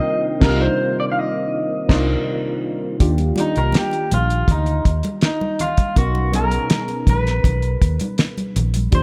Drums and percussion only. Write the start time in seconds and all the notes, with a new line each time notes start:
0.41 kick, snare, crash
1.89 kick, snare, crash
3.00 kick, closed hi-hat
3.18 closed hi-hat, muted conga
3.36 closed hi-hat, high conga
3.56 closed hi-hat
3.72 snare, closed hi-hat, high conga
3.91 closed hi-hat, muted conga
4.11 closed hi-hat, high conga, low conga
4.30 closed hi-hat
4.48 kick, closed hi-hat, low conga
4.66 closed hi-hat
4.85 kick, closed hi-hat
5.03 closed hi-hat, high conga
5.21 snare, closed hi-hat, muted conga
5.41 muted conga, high conga
5.59 closed hi-hat, low conga
5.77 kick, closed hi-hat, high conga
5.96 kick, closed hi-hat, muted conga
6.15 muted conga
6.33 closed hi-hat, high conga
6.51 closed hi-hat
6.70 snare, closed hi-hat, high conga
6.88 closed hi-hat, muted conga
7.07 kick, closed hi-hat, high conga, low conga
7.27 snare, closed hi-hat
7.44 kick, closed hi-hat, low conga
7.62 closed hi-hat
7.82 kick, closed hi-hat
8.00 closed hi-hat, high conga
8.18 snare, closed hi-hat
8.37 closed hi-hat, high conga
8.56 closed hi-hat, low conga
8.74 closed hi-hat, high conga
8.92 kick, closed hi-hat, muted conga